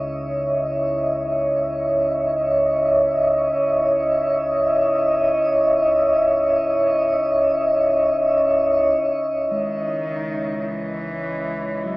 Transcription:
0, 0, Header, 1, 5, 480
1, 0, Start_track
1, 0, Key_signature, 4, "minor"
1, 0, Tempo, 500000
1, 11490, End_track
2, 0, Start_track
2, 0, Title_t, "Ambient pad"
2, 0, Program_c, 0, 92
2, 0, Note_on_c, 0, 73, 79
2, 0, Note_on_c, 0, 75, 68
2, 0, Note_on_c, 0, 76, 71
2, 11490, Note_off_c, 0, 73, 0
2, 11490, Note_off_c, 0, 75, 0
2, 11490, Note_off_c, 0, 76, 0
2, 11490, End_track
3, 0, Start_track
3, 0, Title_t, "Singing bowl"
3, 0, Program_c, 1, 14
3, 9132, Note_on_c, 1, 56, 57
3, 11490, Note_off_c, 1, 56, 0
3, 11490, End_track
4, 0, Start_track
4, 0, Title_t, "Cello"
4, 0, Program_c, 2, 42
4, 9120, Note_on_c, 2, 51, 83
4, 10257, Note_on_c, 2, 52, 83
4, 10271, Note_off_c, 2, 51, 0
4, 11364, Note_on_c, 2, 54, 86
4, 11378, Note_off_c, 2, 52, 0
4, 11490, Note_off_c, 2, 54, 0
4, 11490, End_track
5, 0, Start_track
5, 0, Title_t, "Synth drone"
5, 0, Program_c, 3, 95
5, 0, Note_on_c, 3, 37, 77
5, 0, Note_on_c, 3, 49, 82
5, 9113, Note_off_c, 3, 37, 0
5, 9117, Note_off_c, 3, 49, 0
5, 9124, Note_on_c, 3, 37, 74
5, 9129, Note_on_c, 3, 49, 68
5, 11490, Note_off_c, 3, 37, 0
5, 11490, Note_off_c, 3, 49, 0
5, 11490, End_track
0, 0, End_of_file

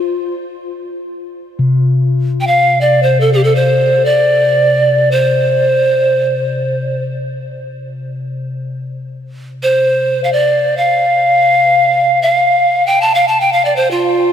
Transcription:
0, 0, Header, 1, 3, 480
1, 0, Start_track
1, 0, Tempo, 500000
1, 13753, End_track
2, 0, Start_track
2, 0, Title_t, "Pan flute"
2, 0, Program_c, 0, 75
2, 0, Note_on_c, 0, 65, 71
2, 330, Note_off_c, 0, 65, 0
2, 2311, Note_on_c, 0, 79, 60
2, 2372, Note_on_c, 0, 77, 84
2, 2386, Note_off_c, 0, 79, 0
2, 2691, Note_off_c, 0, 77, 0
2, 2697, Note_on_c, 0, 74, 73
2, 2907, Note_on_c, 0, 72, 68
2, 2922, Note_off_c, 0, 74, 0
2, 3077, Note_on_c, 0, 69, 64
2, 3092, Note_off_c, 0, 72, 0
2, 3193, Note_off_c, 0, 69, 0
2, 3198, Note_on_c, 0, 67, 62
2, 3301, Note_on_c, 0, 69, 65
2, 3316, Note_off_c, 0, 67, 0
2, 3412, Note_on_c, 0, 72, 72
2, 3427, Note_off_c, 0, 69, 0
2, 3892, Note_on_c, 0, 74, 88
2, 3907, Note_off_c, 0, 72, 0
2, 4910, Note_on_c, 0, 72, 74
2, 4925, Note_off_c, 0, 74, 0
2, 6748, Note_off_c, 0, 72, 0
2, 9245, Note_on_c, 0, 72, 77
2, 9799, Note_off_c, 0, 72, 0
2, 9830, Note_on_c, 0, 77, 50
2, 9913, Note_on_c, 0, 74, 68
2, 9928, Note_off_c, 0, 77, 0
2, 10342, Note_on_c, 0, 77, 86
2, 10357, Note_off_c, 0, 74, 0
2, 11728, Note_off_c, 0, 77, 0
2, 11734, Note_on_c, 0, 77, 76
2, 12352, Note_on_c, 0, 79, 78
2, 12367, Note_off_c, 0, 77, 0
2, 12493, Note_on_c, 0, 81, 78
2, 12508, Note_off_c, 0, 79, 0
2, 12621, Note_on_c, 0, 77, 81
2, 12635, Note_off_c, 0, 81, 0
2, 12749, Note_on_c, 0, 81, 78
2, 12763, Note_off_c, 0, 77, 0
2, 12869, Note_on_c, 0, 79, 75
2, 12884, Note_off_c, 0, 81, 0
2, 12985, Note_on_c, 0, 77, 76
2, 12999, Note_off_c, 0, 79, 0
2, 13104, Note_on_c, 0, 74, 75
2, 13118, Note_off_c, 0, 77, 0
2, 13211, Note_on_c, 0, 72, 74
2, 13225, Note_off_c, 0, 74, 0
2, 13352, Note_on_c, 0, 65, 70
2, 13366, Note_off_c, 0, 72, 0
2, 13753, Note_off_c, 0, 65, 0
2, 13753, End_track
3, 0, Start_track
3, 0, Title_t, "Singing bowl"
3, 0, Program_c, 1, 14
3, 1526, Note_on_c, 1, 48, 67
3, 8788, Note_off_c, 1, 48, 0
3, 13753, End_track
0, 0, End_of_file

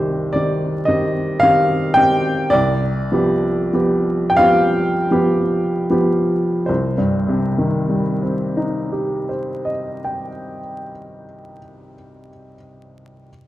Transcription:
0, 0, Header, 1, 2, 480
1, 0, Start_track
1, 0, Key_signature, -3, "minor"
1, 0, Tempo, 1054482
1, 644, Tempo, 1107011
1, 1124, Time_signature, 6, 3, 24, 8
1, 1124, Tempo, 1204819
1, 1604, Tempo, 1376147
1, 2084, Tempo, 1578947
1, 2564, Tempo, 1466993
1, 4787, End_track
2, 0, Start_track
2, 0, Title_t, "Upright piano"
2, 0, Program_c, 0, 0
2, 0, Control_c, 0, 64, 127
2, 0, Note_on_c, 0, 36, 60
2, 0, Note_on_c, 0, 51, 45
2, 0, Note_on_c, 0, 60, 45
2, 0, Note_on_c, 0, 67, 51
2, 0, Note_on_c, 0, 72, 79
2, 143, Note_off_c, 0, 51, 0
2, 143, Note_off_c, 0, 60, 0
2, 145, Note_off_c, 0, 67, 0
2, 148, Note_on_c, 0, 74, 86
2, 154, Note_off_c, 0, 72, 0
2, 161, Note_on_c, 0, 51, 44
2, 161, Note_on_c, 0, 60, 43
2, 163, Note_on_c, 0, 67, 50
2, 382, Note_off_c, 0, 51, 0
2, 382, Note_off_c, 0, 60, 0
2, 383, Note_off_c, 0, 67, 0
2, 388, Note_on_c, 0, 75, 89
2, 393, Note_off_c, 0, 74, 0
2, 401, Note_on_c, 0, 51, 50
2, 401, Note_on_c, 0, 60, 40
2, 402, Note_on_c, 0, 67, 49
2, 627, Note_off_c, 0, 51, 0
2, 627, Note_off_c, 0, 60, 0
2, 627, Note_off_c, 0, 67, 0
2, 635, Note_on_c, 0, 77, 117
2, 638, Note_off_c, 0, 75, 0
2, 649, Note_on_c, 0, 51, 49
2, 651, Note_on_c, 0, 60, 53
2, 652, Note_on_c, 0, 67, 54
2, 867, Note_off_c, 0, 51, 0
2, 868, Note_off_c, 0, 60, 0
2, 868, Note_off_c, 0, 67, 0
2, 871, Note_on_c, 0, 79, 120
2, 877, Note_off_c, 0, 77, 0
2, 883, Note_on_c, 0, 51, 44
2, 883, Note_on_c, 0, 60, 50
2, 886, Note_on_c, 0, 67, 58
2, 1107, Note_off_c, 0, 51, 0
2, 1107, Note_off_c, 0, 60, 0
2, 1109, Note_off_c, 0, 67, 0
2, 1115, Note_on_c, 0, 74, 107
2, 1119, Note_off_c, 0, 79, 0
2, 1126, Note_off_c, 0, 36, 0
2, 1126, Note_on_c, 0, 36, 74
2, 1132, Control_c, 0, 64, 0
2, 1201, Control_c, 0, 64, 127
2, 1350, Note_off_c, 0, 36, 0
2, 1361, Note_on_c, 0, 53, 57
2, 1364, Note_on_c, 0, 59, 52
2, 1367, Note_on_c, 0, 67, 60
2, 1590, Note_off_c, 0, 53, 0
2, 1591, Note_off_c, 0, 59, 0
2, 1593, Note_off_c, 0, 67, 0
2, 1606, Note_on_c, 0, 53, 54
2, 1608, Note_on_c, 0, 59, 59
2, 1610, Note_on_c, 0, 67, 61
2, 1796, Note_off_c, 0, 74, 0
2, 1803, Note_on_c, 0, 79, 88
2, 1821, Note_off_c, 0, 53, 0
2, 1822, Note_off_c, 0, 59, 0
2, 1823, Note_off_c, 0, 67, 0
2, 1827, Note_on_c, 0, 77, 118
2, 1835, Note_off_c, 0, 79, 0
2, 1836, Note_on_c, 0, 53, 57
2, 1837, Note_on_c, 0, 59, 56
2, 1837, Note_on_c, 0, 67, 63
2, 2071, Note_off_c, 0, 53, 0
2, 2071, Note_off_c, 0, 59, 0
2, 2071, Note_off_c, 0, 67, 0
2, 2086, Note_on_c, 0, 53, 60
2, 2089, Note_on_c, 0, 59, 63
2, 2089, Note_on_c, 0, 67, 72
2, 2315, Note_off_c, 0, 53, 0
2, 2316, Note_off_c, 0, 59, 0
2, 2316, Note_off_c, 0, 67, 0
2, 2323, Note_off_c, 0, 77, 0
2, 2327, Note_on_c, 0, 53, 64
2, 2328, Note_on_c, 0, 59, 55
2, 2330, Note_on_c, 0, 67, 63
2, 2552, Note_off_c, 0, 53, 0
2, 2552, Note_off_c, 0, 59, 0
2, 2553, Note_off_c, 0, 67, 0
2, 2558, Note_on_c, 0, 72, 72
2, 2566, Note_on_c, 0, 36, 63
2, 2570, Control_c, 0, 64, 0
2, 2651, Control_c, 0, 64, 127
2, 2661, Note_on_c, 0, 43, 61
2, 2761, Note_on_c, 0, 48, 65
2, 2858, Note_on_c, 0, 51, 58
2, 2959, Note_on_c, 0, 55, 48
2, 3070, Note_on_c, 0, 60, 51
2, 3181, Note_on_c, 0, 63, 55
2, 3297, Note_on_c, 0, 67, 48
2, 3412, Note_off_c, 0, 72, 0
2, 3417, Note_on_c, 0, 72, 48
2, 3535, Note_on_c, 0, 75, 54
2, 3548, Note_off_c, 0, 36, 0
2, 3643, Note_off_c, 0, 43, 0
2, 3665, Note_on_c, 0, 79, 47
2, 3744, Note_off_c, 0, 48, 0
2, 3841, Note_off_c, 0, 51, 0
2, 3941, Note_off_c, 0, 55, 0
2, 4053, Note_off_c, 0, 60, 0
2, 4164, Note_off_c, 0, 63, 0
2, 4279, Note_off_c, 0, 67, 0
2, 4399, Note_off_c, 0, 72, 0
2, 4483, Note_off_c, 0, 75, 0
2, 4484, Note_off_c, 0, 79, 0
2, 4727, Control_c, 0, 64, 0
2, 4787, End_track
0, 0, End_of_file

